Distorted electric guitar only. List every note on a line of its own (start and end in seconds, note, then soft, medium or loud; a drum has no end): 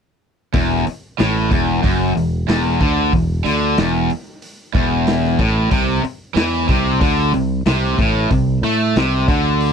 0.54 0.85 E2 medium
0.87 muted distorted electric guitar stroke medium
1.19 1.50 A2 medium
1.50 1.82 E2 medium
1.82 2.14 F#2 loud
2.16 2.42 E2 medium
2.48 2.80 E2 loud
2.81 3.12 D3 loud
3.13 3.39 E2 medium
3.46 3.77 D3 loud
3.78 4.09 E2 medium
4.76 5.39 E2 medium
5.39 5.71 A2 loud
5.72 6.03 C3 loud
6.05 muted distorted electric guitar stroke medium
6.37 6.68 E3 loud
6.70 7.01 C3 loud
7.03 7.34 D3 loud
7.34 7.60 C3 medium
7.66 7.98 C3 loud
7.98 8.30 A2 medium
8.31 8.57 C3 medium
8.64 8.95 A3 loud
8.97 9.28 C3 medium
9.28 9.73 D3 medium